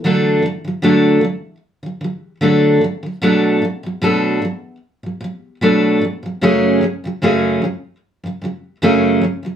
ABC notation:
X:1
M:4/4
L:1/16
Q:"Swing 16ths" 1/4=75
K:Dlyd
V:1 name="Steel-string acoustic guitar" clef=bass
[D,F,A,DA]2 [D,F,] [D,F,] [D,F,A,DA]2 [D,F,]2 z [D,F,] [D,F,]2 [D,F,A,DA]2 [D,F,] [D,F,] | [B,,F,A,DA]2 [B,,F,] [B,,F,] [B,,F,A,DA]2 [B,,F,]2 z [B,,F,] [B,,F,]2 [B,,F,A,DA]2 [B,,F,] [B,,F,] | [F,,C,F,A,CG]2 [F,,C,F,] [F,,C,F,] [F,,C,F,A,CG]2 [F,,C,F,]2 z [F,,C,F,] [F,,C,F,]2 [F,,C,F,A,CG]2 [F,,C,F,] [F,,C,F,] |]